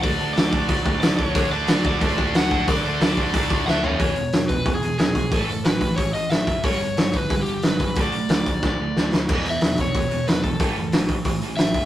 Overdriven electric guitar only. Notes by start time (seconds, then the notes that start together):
0.03 D5
0.34 D5
0.53 D5
1.01 D5
1.17 C#5
1.52 D5
1.87 D5
2.37 F#5
2.69 D5
3.04 D5
3.37 D5
3.67 E5 F#5
3.84 C#5
4.48 B4
4.74 G#4
4.99 G#4
5.32 A4
5.65 B4
5.96 C#5
6.14 D#5
6.30 E5
6.65 C#5
6.99 C#5
7.17 B4
7.42 G4
7.68 B4
8.01 D5
8.35 D5
8.67 D5
9.50 E5
9.81 C#5
10.28 B4
10.43 A4
11.57 E5